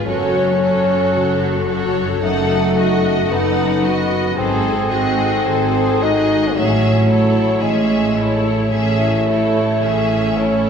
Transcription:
Already playing: harp G#2 G#3 B3 F4
0.06 double bass section F#1, harp F#2, cello section F#2, bassoon C#4, viola section F#4, french horn section F#4 A4, violin section A4 C#5
0.33 harp F#4
0.60 harp C#4, viola section F#4, violin section A4 C#5
0.87 harp F#4
1.14 double bass section F#1, cello section F#2, harp C#3
1.42 harp F#4
1.67 harp C#4, viola section F#4, violin section A4 C#5
1.95 harp F#4
2.22 double bass section F#1, harp F#2, cello section F#2, bassoon A3, viola section D#4, french horn section D#4, violin section A4 F#5
2.51 harp F#4
2.77 harp D#4, violin section F#4 D#5, viola section F#4
3.04 harp F#4
3.30 double bass section F#1, cello section F#2, harp F#3, bassoon B3, viola section D#4, violin section A4 F#5
3.59 harp F#4
3.84 harp D#4, viola section F#4, violin section F#4 D#5
4.12 harp F#4
4.36 double bass section G#1, harp G#2, cello section G#2, bassoon C4, french horn section F#4 A4, viola section G#4, violin section A4 C5
4.65 harp F#4
4.91 harp D#4, viola section F#4, violin section G#4 D#5
5.19 harp F#4
5.46 double bass section G#1, cello section G#2, harp D#3, viola section G#4, violin section A4 C5
5.74 harp F#4
6.01 harp D#4, bassoon D#4, viola section F#4, violin section G#4 D#5
6.28 harp F#4
6.54 double bass section A1, cello section A2, harp A2, bassoon F#3, viola section C#4, french horn section E4 C#5, violin section G#4 E5
6.81 harp E4
7.07 harp C#4, viola section E4, violin section A4 C#5
7.34 harp E4
7.60 double bass section A1, cello section A2, harp E3, bassoon G#3, viola section C#4, violin section G#4 E5
7.88 harp E4
8.15 harp C#4, viola section E4, violin section A4 C#5
8.43 harp E4
8.71 double bass section A1, cello section A2, harp E3, bassoon A3, viola section C#4, violin section G#4 E5
9.00 harp E4
9.26 harp C#4, viola section E4, violin section A4 C#5
9.54 harp E4
9.81 double bass section A1, cello section A2, harp E3, viola section C#4, violin section G#4 E5
10.09 harp E4
10.38 bassoon C#4, harp C#4, viola section E4, violin section A4 C#5

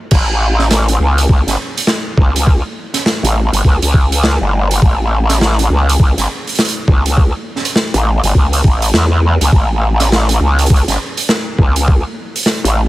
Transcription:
0.11 wobble bass A1, kick, crash
0.59 snare
0.71 snare, closed hi-hat
0.88 closed hi-hat
1.00 wobble bass C#2
1.18 closed hi-hat
1.29 wobble bass C#2, kick
1.47 wobble bass G1, snare, closed hi-hat
1.77 closed hi-hat
1.87 snare
2.17 wobble bass C#2, kick
2.36 closed hi-hat
2.47 kick
2.94 snare, closed hi-hat
3.06 snare
3.23 wobble bass A1, closed hi-hat
3.53 wobble bass G1, closed hi-hat
3.64 wobble bass C#2, kick
3.82 wobble bass C#2, closed hi-hat
3.94 kick
4.12 closed hi-hat
4.24 snare
4.41 wobble bass G1
4.71 closed hi-hat
4.82 wobble bass A1, kick
5.29 snare, closed hi-hat
5.41 snare
5.59 closed hi-hat
5.70 wobble bass C#2
5.89 closed hi-hat
6.00 wobble bass C#2, kick
6.18 wobble bass G1, snare, closed hi-hat
6.47 closed hi-hat
6.49 closed hi-hat
6.55 snare, closed hi-hat
6.59 closed hi-hat
6.65 closed hi-hat
6.68 closed hi-hat
6.88 wobble bass C#2, kick
7.06 closed hi-hat
7.17 kick
7.56 snare
7.65 closed hi-hat
7.76 snare
7.94 wobble bass A1, closed hi-hat
8.23 wobble bass G1, closed hi-hat
8.35 wobble bass C#2, kick
8.53 closed hi-hat
8.64 wobble bass A1, kick
8.82 closed hi-hat
8.94 wobble bass E2, snare
9.41 wobble bass C#2, closed hi-hat
9.52 wobble bass A1, kick
10.00 snare, closed hi-hat
10.12 snare
10.29 closed hi-hat
10.40 wobble bass C#2
10.59 closed hi-hat
10.66 wobble bass C#2, closed hi-hat
10.70 kick
10.76 closed hi-hat
10.88 wobble bass G1, snare, closed hi-hat
11.17 closed hi-hat
11.29 snare
11.59 wobble bass C#2, kick
11.76 closed hi-hat
11.88 kick
12.36 closed hi-hat
12.43 snare, closed hi-hat
12.47 closed hi-hat
12.53 closed hi-hat
12.57 closed hi-hat
12.64 wobble bass A1, closed hi-hat

